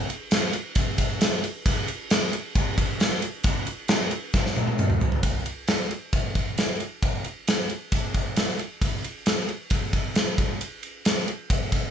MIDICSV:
0, 0, Header, 1, 2, 480
1, 0, Start_track
1, 0, Tempo, 447761
1, 1772, Time_signature, 4, 2, 24, 8
1, 12763, End_track
2, 0, Start_track
2, 0, Title_t, "Drums"
2, 91, Note_on_c, 9, 82, 72
2, 105, Note_on_c, 9, 51, 72
2, 198, Note_off_c, 9, 82, 0
2, 212, Note_off_c, 9, 51, 0
2, 329, Note_on_c, 9, 82, 86
2, 332, Note_on_c, 9, 51, 112
2, 342, Note_on_c, 9, 38, 118
2, 436, Note_off_c, 9, 82, 0
2, 439, Note_off_c, 9, 51, 0
2, 449, Note_off_c, 9, 38, 0
2, 570, Note_on_c, 9, 51, 75
2, 574, Note_on_c, 9, 82, 74
2, 677, Note_off_c, 9, 51, 0
2, 681, Note_off_c, 9, 82, 0
2, 691, Note_on_c, 9, 82, 28
2, 799, Note_off_c, 9, 82, 0
2, 806, Note_on_c, 9, 51, 102
2, 813, Note_on_c, 9, 36, 105
2, 813, Note_on_c, 9, 82, 90
2, 913, Note_off_c, 9, 51, 0
2, 920, Note_off_c, 9, 36, 0
2, 921, Note_off_c, 9, 82, 0
2, 1050, Note_on_c, 9, 51, 80
2, 1054, Note_on_c, 9, 36, 78
2, 1059, Note_on_c, 9, 82, 73
2, 1157, Note_off_c, 9, 51, 0
2, 1162, Note_off_c, 9, 36, 0
2, 1166, Note_off_c, 9, 82, 0
2, 1293, Note_on_c, 9, 51, 108
2, 1293, Note_on_c, 9, 82, 85
2, 1304, Note_on_c, 9, 38, 113
2, 1400, Note_off_c, 9, 82, 0
2, 1401, Note_off_c, 9, 51, 0
2, 1411, Note_off_c, 9, 38, 0
2, 1423, Note_on_c, 9, 82, 26
2, 1530, Note_off_c, 9, 82, 0
2, 1538, Note_on_c, 9, 82, 68
2, 1540, Note_on_c, 9, 51, 76
2, 1646, Note_off_c, 9, 82, 0
2, 1647, Note_off_c, 9, 51, 0
2, 1777, Note_on_c, 9, 36, 114
2, 1777, Note_on_c, 9, 51, 109
2, 1781, Note_on_c, 9, 82, 86
2, 1884, Note_off_c, 9, 36, 0
2, 1884, Note_off_c, 9, 51, 0
2, 1888, Note_off_c, 9, 82, 0
2, 2016, Note_on_c, 9, 51, 75
2, 2019, Note_on_c, 9, 82, 74
2, 2123, Note_off_c, 9, 51, 0
2, 2126, Note_off_c, 9, 82, 0
2, 2254, Note_on_c, 9, 51, 112
2, 2258, Note_on_c, 9, 82, 89
2, 2265, Note_on_c, 9, 38, 120
2, 2361, Note_off_c, 9, 51, 0
2, 2366, Note_off_c, 9, 82, 0
2, 2372, Note_off_c, 9, 38, 0
2, 2496, Note_on_c, 9, 82, 69
2, 2497, Note_on_c, 9, 51, 72
2, 2603, Note_off_c, 9, 82, 0
2, 2605, Note_off_c, 9, 51, 0
2, 2737, Note_on_c, 9, 82, 106
2, 2738, Note_on_c, 9, 51, 89
2, 2739, Note_on_c, 9, 36, 106
2, 2844, Note_off_c, 9, 82, 0
2, 2845, Note_off_c, 9, 51, 0
2, 2846, Note_off_c, 9, 36, 0
2, 2976, Note_on_c, 9, 82, 77
2, 2978, Note_on_c, 9, 36, 89
2, 2982, Note_on_c, 9, 51, 71
2, 3083, Note_off_c, 9, 82, 0
2, 3085, Note_off_c, 9, 36, 0
2, 3090, Note_off_c, 9, 51, 0
2, 3103, Note_on_c, 9, 82, 32
2, 3211, Note_off_c, 9, 82, 0
2, 3217, Note_on_c, 9, 51, 89
2, 3217, Note_on_c, 9, 82, 102
2, 3228, Note_on_c, 9, 38, 100
2, 3324, Note_off_c, 9, 82, 0
2, 3325, Note_off_c, 9, 51, 0
2, 3335, Note_off_c, 9, 38, 0
2, 3451, Note_on_c, 9, 82, 73
2, 3453, Note_on_c, 9, 51, 73
2, 3558, Note_off_c, 9, 82, 0
2, 3560, Note_off_c, 9, 51, 0
2, 3570, Note_on_c, 9, 82, 29
2, 3678, Note_off_c, 9, 82, 0
2, 3682, Note_on_c, 9, 51, 95
2, 3691, Note_on_c, 9, 36, 112
2, 3692, Note_on_c, 9, 82, 96
2, 3789, Note_off_c, 9, 51, 0
2, 3799, Note_off_c, 9, 36, 0
2, 3799, Note_off_c, 9, 82, 0
2, 3815, Note_on_c, 9, 82, 28
2, 3922, Note_off_c, 9, 82, 0
2, 3926, Note_on_c, 9, 82, 75
2, 3930, Note_on_c, 9, 51, 74
2, 4033, Note_off_c, 9, 82, 0
2, 4037, Note_off_c, 9, 51, 0
2, 4052, Note_on_c, 9, 82, 30
2, 4159, Note_off_c, 9, 82, 0
2, 4162, Note_on_c, 9, 51, 107
2, 4163, Note_on_c, 9, 82, 96
2, 4172, Note_on_c, 9, 38, 127
2, 4269, Note_off_c, 9, 51, 0
2, 4271, Note_off_c, 9, 82, 0
2, 4279, Note_off_c, 9, 38, 0
2, 4401, Note_on_c, 9, 82, 71
2, 4405, Note_on_c, 9, 51, 78
2, 4508, Note_off_c, 9, 82, 0
2, 4513, Note_off_c, 9, 51, 0
2, 4640, Note_on_c, 9, 82, 110
2, 4651, Note_on_c, 9, 36, 98
2, 4657, Note_on_c, 9, 38, 60
2, 4747, Note_off_c, 9, 82, 0
2, 4758, Note_off_c, 9, 36, 0
2, 4764, Note_off_c, 9, 38, 0
2, 4783, Note_on_c, 9, 38, 58
2, 4889, Note_on_c, 9, 82, 75
2, 4890, Note_off_c, 9, 38, 0
2, 4893, Note_on_c, 9, 48, 78
2, 4996, Note_off_c, 9, 82, 0
2, 5000, Note_off_c, 9, 48, 0
2, 5010, Note_on_c, 9, 82, 33
2, 5011, Note_on_c, 9, 48, 68
2, 5117, Note_off_c, 9, 82, 0
2, 5118, Note_off_c, 9, 48, 0
2, 5130, Note_on_c, 9, 82, 103
2, 5135, Note_on_c, 9, 47, 86
2, 5237, Note_off_c, 9, 82, 0
2, 5242, Note_off_c, 9, 47, 0
2, 5250, Note_on_c, 9, 45, 84
2, 5256, Note_on_c, 9, 82, 29
2, 5358, Note_off_c, 9, 45, 0
2, 5363, Note_off_c, 9, 82, 0
2, 5367, Note_on_c, 9, 82, 76
2, 5374, Note_on_c, 9, 43, 104
2, 5474, Note_off_c, 9, 82, 0
2, 5481, Note_off_c, 9, 43, 0
2, 5489, Note_on_c, 9, 43, 93
2, 5596, Note_off_c, 9, 43, 0
2, 5606, Note_on_c, 9, 51, 103
2, 5609, Note_on_c, 9, 36, 109
2, 5714, Note_off_c, 9, 51, 0
2, 5716, Note_off_c, 9, 36, 0
2, 5850, Note_on_c, 9, 51, 76
2, 5957, Note_off_c, 9, 51, 0
2, 6084, Note_on_c, 9, 51, 101
2, 6094, Note_on_c, 9, 38, 118
2, 6191, Note_off_c, 9, 51, 0
2, 6202, Note_off_c, 9, 38, 0
2, 6332, Note_on_c, 9, 51, 67
2, 6439, Note_off_c, 9, 51, 0
2, 6568, Note_on_c, 9, 51, 76
2, 6571, Note_on_c, 9, 36, 102
2, 6676, Note_off_c, 9, 51, 0
2, 6678, Note_off_c, 9, 36, 0
2, 6808, Note_on_c, 9, 51, 65
2, 6811, Note_on_c, 9, 36, 79
2, 6916, Note_off_c, 9, 51, 0
2, 6918, Note_off_c, 9, 36, 0
2, 7049, Note_on_c, 9, 51, 88
2, 7060, Note_on_c, 9, 38, 98
2, 7157, Note_off_c, 9, 51, 0
2, 7167, Note_off_c, 9, 38, 0
2, 7290, Note_on_c, 9, 51, 68
2, 7398, Note_off_c, 9, 51, 0
2, 7531, Note_on_c, 9, 36, 108
2, 7532, Note_on_c, 9, 51, 83
2, 7638, Note_off_c, 9, 36, 0
2, 7639, Note_off_c, 9, 51, 0
2, 7766, Note_on_c, 9, 51, 68
2, 7873, Note_off_c, 9, 51, 0
2, 8013, Note_on_c, 9, 51, 105
2, 8024, Note_on_c, 9, 38, 120
2, 8120, Note_off_c, 9, 51, 0
2, 8131, Note_off_c, 9, 38, 0
2, 8249, Note_on_c, 9, 51, 71
2, 8356, Note_off_c, 9, 51, 0
2, 8489, Note_on_c, 9, 51, 91
2, 8491, Note_on_c, 9, 36, 92
2, 8596, Note_off_c, 9, 51, 0
2, 8599, Note_off_c, 9, 36, 0
2, 8730, Note_on_c, 9, 51, 70
2, 8731, Note_on_c, 9, 36, 78
2, 8837, Note_off_c, 9, 51, 0
2, 8838, Note_off_c, 9, 36, 0
2, 8966, Note_on_c, 9, 51, 99
2, 8977, Note_on_c, 9, 38, 107
2, 9073, Note_off_c, 9, 51, 0
2, 9084, Note_off_c, 9, 38, 0
2, 9211, Note_on_c, 9, 51, 69
2, 9318, Note_off_c, 9, 51, 0
2, 9450, Note_on_c, 9, 36, 109
2, 9451, Note_on_c, 9, 51, 104
2, 9557, Note_off_c, 9, 36, 0
2, 9558, Note_off_c, 9, 51, 0
2, 9694, Note_on_c, 9, 51, 77
2, 9801, Note_off_c, 9, 51, 0
2, 9925, Note_on_c, 9, 51, 105
2, 9936, Note_on_c, 9, 38, 122
2, 10032, Note_off_c, 9, 51, 0
2, 10043, Note_off_c, 9, 38, 0
2, 10167, Note_on_c, 9, 51, 66
2, 10274, Note_off_c, 9, 51, 0
2, 10399, Note_on_c, 9, 51, 85
2, 10408, Note_on_c, 9, 36, 98
2, 10506, Note_off_c, 9, 51, 0
2, 10515, Note_off_c, 9, 36, 0
2, 10644, Note_on_c, 9, 51, 70
2, 10647, Note_on_c, 9, 36, 88
2, 10751, Note_off_c, 9, 51, 0
2, 10754, Note_off_c, 9, 36, 0
2, 10884, Note_on_c, 9, 51, 89
2, 10895, Note_on_c, 9, 38, 109
2, 10991, Note_off_c, 9, 51, 0
2, 11002, Note_off_c, 9, 38, 0
2, 11129, Note_on_c, 9, 36, 101
2, 11131, Note_on_c, 9, 51, 65
2, 11236, Note_off_c, 9, 36, 0
2, 11238, Note_off_c, 9, 51, 0
2, 11372, Note_on_c, 9, 51, 86
2, 11479, Note_off_c, 9, 51, 0
2, 11608, Note_on_c, 9, 51, 68
2, 11715, Note_off_c, 9, 51, 0
2, 11848, Note_on_c, 9, 51, 100
2, 11858, Note_on_c, 9, 38, 119
2, 11955, Note_off_c, 9, 51, 0
2, 11965, Note_off_c, 9, 38, 0
2, 12091, Note_on_c, 9, 51, 67
2, 12198, Note_off_c, 9, 51, 0
2, 12329, Note_on_c, 9, 36, 102
2, 12332, Note_on_c, 9, 51, 88
2, 12436, Note_off_c, 9, 36, 0
2, 12439, Note_off_c, 9, 51, 0
2, 12566, Note_on_c, 9, 36, 83
2, 12566, Note_on_c, 9, 51, 69
2, 12673, Note_off_c, 9, 36, 0
2, 12673, Note_off_c, 9, 51, 0
2, 12763, End_track
0, 0, End_of_file